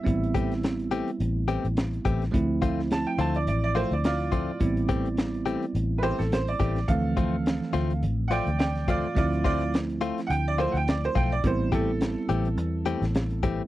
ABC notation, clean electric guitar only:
X:1
M:4/4
L:1/8
Q:"Swing 16ths" 1/4=106
K:Am
V:1 name="Clean electric guitar"
z [E,A,CG] z [E,A,CG] z [E,A,CG] z [E,A,CG] | z [F,A,CF] z [F,A,CF] z [F,A,CF] z [F,A,CF] | z [E,A,CG] z [E,A,CG] z [E,A,CG] z [E,A,CG] | z [F,A,CF] z [F,A,CF] z [F,A,CF] z [F,A,CF] |
z [F,A,CF] z [F,A,CF] z [F,A,CF] z [F,A,CF] | z [E,A,CG] z [E,A,CG] z [E,A,CG] z [E,A,CG] |]